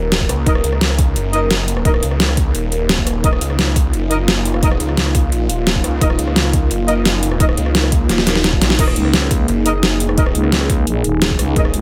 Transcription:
Already playing: D#1 A#3 D#4 A#4
0.12 snare, closed hi-hat
0.20 kick
0.29 C#2, cross-stick, closed hi-hat
0.46 D#1 D#4 A#4 D#5, kick, closed hi-hat
0.55 cross-stick
0.64 C#2, closed hi-hat
0.73 cross-stick
0.81 snare, closed hi-hat
0.90 cross-stick
0.99 kick, closed hi-hat
1.16 F#1, closed hi-hat
1.33 D#4 A#4 D#5, closed hi-hat
1.51 snare, closed hi-hat
1.68 closed hi-hat
1.77 cross-stick
1.85 D#4 A#4 D#5, kick, closed hi-hat
1.94 cross-stick
2.03 C#2, closed hi-hat
2.11 cross-stick
2.20 snare, closed hi-hat
2.29 cross-stick
2.37 kick, closed hi-hat
2.55 D#1, closed hi-hat
2.72 closed hi-hat
2.89 snare, closed hi-hat
2.98 kick
3.07 cross-stick, closed hi-hat
3.24 D#1 D#4 F4 A#4 D#5, kick, closed hi-hat
3.33 cross-stick
3.41 C#2, closed hi-hat
3.50 cross-stick
3.59 snare, closed hi-hat
3.67 cross-stick
3.76 kick, closed hi-hat
3.93 F#1, closed hi-hat
4.11 D#4 A#4 D#5, closed hi-hat
4.28 snare, closed hi-hat
4.45 closed hi-hat
4.53 F1, cross-stick
4.63 D#4 A#4 D#5, kick, closed hi-hat
4.71 cross-stick
4.80 C#2, closed hi-hat
4.89 cross-stick
4.97 snare, closed hi-hat
5.06 cross-stick
5.15 kick, closed hi-hat
5.32 A#1, closed hi-hat
5.49 D#1, closed hi-hat
5.67 snare, closed hi-hat
5.75 kick
5.84 C#2, cross-stick, closed hi-hat
6.01 D#1 D#4 A#4 D#5, kick, closed hi-hat
6.10 cross-stick
6.19 C#2, closed hi-hat
6.27 cross-stick
6.36 snare, closed hi-hat
6.45 cross-stick
6.53 kick, closed hi-hat
6.71 F#1, closed hi-hat
6.88 D#4 A#4 D#5, closed hi-hat
7.05 snare, closed hi-hat
7.23 closed hi-hat
7.31 cross-stick
7.40 D#4 A#4 D#5, kick, closed hi-hat
7.49 cross-stick
7.57 C#2, closed hi-hat
7.66 cross-stick
7.75 snare, closed hi-hat
7.83 cross-stick
7.92 kick, closed hi-hat
8.09 D#1, snare, closed hi-hat
8.18 snare
8.27 snare, closed hi-hat
8.35 snare
8.44 D#1, snare, closed hi-hat
8.53 kick
8.62 A#1, snare, closed hi-hat
8.70 snare
8.79 D#1 D#4 G#4 A#4 D#5, kick, closed hi-hat, crash
8.88 cross-stick
8.96 C#2, closed hi-hat
9.05 cross-stick
9.14 snare, closed hi-hat
9.22 cross-stick
9.31 kick, closed hi-hat
9.48 F#1, closed hi-hat
9.66 D#4 A#4 D#5, closed hi-hat
9.83 snare, closed hi-hat
10.00 closed hi-hat
10.09 cross-stick
10.18 D#4 A#4 D#5, kick, closed hi-hat
10.26 cross-stick
10.35 C#2, closed hi-hat
10.44 cross-stick
10.52 snare, closed hi-hat
10.61 cross-stick
10.70 kick, closed hi-hat
10.87 A#1, closed hi-hat
11.04 D#1, closed hi-hat
11.22 snare, closed hi-hat
11.30 kick
11.39 C#2, cross-stick, closed hi-hat
11.56 D#1 D#4 A#4 D#5, kick, closed hi-hat
11.65 cross-stick
11.74 C#2, closed hi-hat

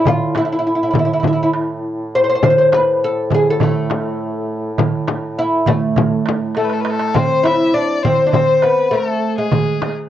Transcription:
Already playing: A2
0.05 F4, darbuka dum, frame drum
0.35 E4, darbuka tek, frame drum
0.45 E4
0.52 E4
0.59 E4
0.67 E4
0.75 E4
0.83 E4
0.91 E4, darbuka dum
0.95 frame drum
0.99 E4
1.05 E4, darbuka ka
1.13 E4
1.20 E4, darbuka dum
1.24 E4, frame drum
1.33 E4
1.39 E4, darbuka ka
1.53 darbuka tek
2.15 C5
2.24 C5
2.30 C5
2.35 C5
2.42 A2 C5, frame drum, darbuka dum
2.50 C5
2.58 C5
2.72 B4, darbuka tek, frame drum
3.04 A4
3.30 darbuka dum, frame drum
3.35 G#4
3.46 darbuka ka
3.50 A4
3.60 A3, darbuka dum, frame drum
3.77 darbuka ka
3.90 darbuka tek, frame drum
4.78 darbuka dum, frame drum
5.08 darbuka tek, frame drum
5.37 E4, darbuka ka
5.66 A3, darbuka dum, frame drum
5.81 darbuka ka
5.96 darbuka dum, frame drum
6.10 darbuka ka
6.26 darbuka tek, frame drum
6.55 A3 A4, darbuka tek
6.64 B4
6.70 A4, darbuka ka
6.80 B4
6.85 darbuka tek
6.90 A4
6.99 darbuka ka
7.14 C4 C5, darbuka dum, frame drum
7.43 E4 E5, darbuka tek, frame drum
7.74 D4 D5, darbuka ka
8.03 C4 C5, darbuka dum, frame drum
8.27 D4
8.32 C4 C5, darbuka dum, frame drum
8.48 darbuka ka
8.62 B3 B4, darbuka tek
8.91 A3 A4
9.38 G#3 G#4
9.52 darbuka dum, frame drum
9.82 darbuka tek, frame drum

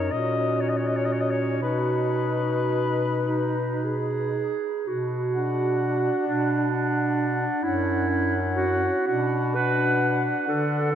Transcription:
Already playing: D#4 C#5
0.11 A#2 C#4 F#4 D#5
0.61 C#5
0.69 D#5
0.77 C#5
0.87 D#5
0.97 C#5
1.05 D#5
1.13 C#5
1.21 D#5
1.31 C#5
1.61 B2 D#4 F#4 B4
3.28 D#4
3.84 G#4
4.87 B2 F#4
5.33 D4 F#5
6.26 B2 D4
6.71 D4 F#5
7.63 F#2 C#4 E4 F#5
8.09 C#4 F#5
8.55 F#4
9.07 B2 D4 F#4 F#5
9.55 D4 B4 F#5
10.47 D3 D4 A4 F#5

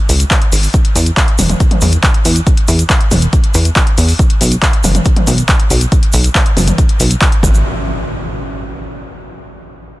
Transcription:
0.09 C#2, open hi-hat, shaker
0.20 closed hi-hat, shaker
0.31 kick, clap, closed hi-hat, shaker
0.42 closed hi-hat
0.52 G#1, open hi-hat, shaker
0.63 open hi-hat, shaker
0.74 kick, closed hi-hat, shaker
0.85 closed hi-hat
0.95 E2, open hi-hat, shaker
1.06 closed hi-hat, shaker
1.17 kick, clap, closed hi-hat, shaker
1.28 closed hi-hat
1.38 E1, open hi-hat, mid tom, shaker
1.50 closed hi-hat, mid tom, shaker
1.60 kick, closed hi-hat, shaker
1.71 closed hi-hat, mid tom
1.81 E2, open hi-hat, mid tom, shaker
1.92 closed hi-hat, shaker
2.03 kick, clap, closed hi-hat, shaker
2.14 closed hi-hat
2.25 E2, open hi-hat, shaker
2.36 closed hi-hat, shaker
2.47 kick, closed hi-hat, shaker
2.57 closed hi-hat
2.68 E2, open hi-hat, shaker
2.79 closed hi-hat, shaker
2.90 kick, clap, closed hi-hat, shaker
3.01 closed hi-hat
3.11 E1, open hi-hat, mid tom, shaker
3.22 closed hi-hat, shaker
3.33 kick, closed hi-hat, shaker
3.44 closed hi-hat
3.54 E2, open hi-hat, shaker
3.65 closed hi-hat, shaker
3.76 kick, clap, closed hi-hat, shaker
3.87 closed hi-hat
3.98 E2, open hi-hat, shaker
4.08 open hi-hat, shaker
4.19 kick, closed hi-hat, shaker
4.30 closed hi-hat
4.41 B1, open hi-hat, shaker
4.52 closed hi-hat, shaker
4.62 kick, clap, closed hi-hat, shaker
4.73 closed hi-hat
4.84 F#1, open hi-hat, mid tom, shaker
4.95 closed hi-hat, mid tom, shaker
5.05 kick, closed hi-hat, shaker
5.16 closed hi-hat, mid tom
5.27 B1, open hi-hat, mid tom, shaker
5.38 closed hi-hat, shaker
5.48 kick, clap, closed hi-hat, shaker
5.60 closed hi-hat
5.70 B1, open hi-hat, shaker
5.81 closed hi-hat, shaker
5.92 kick, closed hi-hat, shaker
6.03 closed hi-hat
6.13 B1, open hi-hat, shaker
6.24 closed hi-hat, shaker
6.35 kick, clap, closed hi-hat, shaker
6.46 closed hi-hat
6.57 F#1, open hi-hat, mid tom, shaker
6.67 closed hi-hat, mid tom, shaker
6.78 kick, closed hi-hat, shaker
6.89 closed hi-hat
7.00 B1, open hi-hat, shaker
7.11 closed hi-hat, shaker
7.21 kick, clap, closed hi-hat, shaker
7.32 closed hi-hat
7.43 G#1, kick, impact, shaker
7.54 shaker

